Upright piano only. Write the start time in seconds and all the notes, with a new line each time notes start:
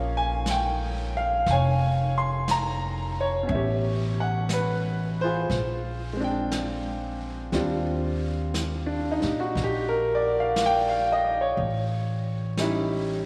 Already playing: A#3 C#4 F4 G#4 C#5 F5
0.17 G#5
0.51 G5
1.17 F5
1.51 C#5 F5 G#5
2.18 C6
2.51 A#5
3.20 C#5
3.43 B2 C#4
3.51 E5
3.55 G4 C#5
4.20 F#5
4.54 B4
5.21 F4 G#4 C5
6.13 G#3 C4
6.20 D4 G5
7.53 G3 C4 D4 F4
8.86 D4
9.11 D#4
9.20 D4 G4
9.40 F#4
9.64 G4
9.89 A#4
10.15 D5
10.40 F5
10.66 G5
10.89 F5
11.12 D#5
11.41 C#5
12.59 G3 C#4 D#4 E4